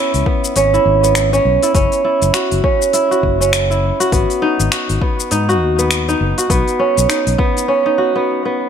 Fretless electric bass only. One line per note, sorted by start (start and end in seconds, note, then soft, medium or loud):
0.14 0.22 C#2 medium
0.56 0.77 G#1 medium
0.86 1.38 G#1 medium
1.45 1.56 B1 medium
1.75 1.86 F#1 medium
2.22 2.30 F#1 medium
2.52 2.60 F#1 medium
3.23 3.90 F#1 loud
4.12 4.24 G#1 loud
4.60 4.67 G#1 medium
4.90 4.97 G#1 medium
5.32 5.61 G#2 medium
5.61 6.13 D#2 loud
6.21 6.32 F#1 medium
6.50 6.61 B1 medium
6.98 7.05 B1 medium
7.27 7.35 B1 medium